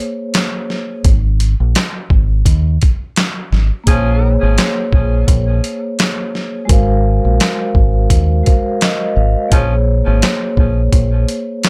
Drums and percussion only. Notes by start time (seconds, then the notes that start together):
0.34 snare, clap, closed hi-hat
0.70 snare
1.05 kick, closed hi-hat
1.40 closed hi-hat
1.75 snare, clap, closed hi-hat
2.10 kick
2.46 kick, closed hi-hat
2.82 kick, closed hi-hat
3.16 snare, clap, closed hi-hat
3.53 snare
3.87 kick, closed hi-hat
4.58 snare, clap, closed hi-hat
4.93 kick
5.28 kick, closed hi-hat
5.64 closed hi-hat
5.99 snare, clap, closed hi-hat
6.35 snare
6.69 kick, closed hi-hat
7.40 snare, clap, closed hi-hat
7.75 kick
8.10 kick, closed hi-hat
8.46 kick, closed hi-hat
8.81 snare, clap, closed hi-hat
9.52 kick, closed hi-hat
10.22 snare, clap, closed hi-hat
10.57 kick
10.93 kick, closed hi-hat
11.28 closed hi-hat
11.63 snare, clap, closed hi-hat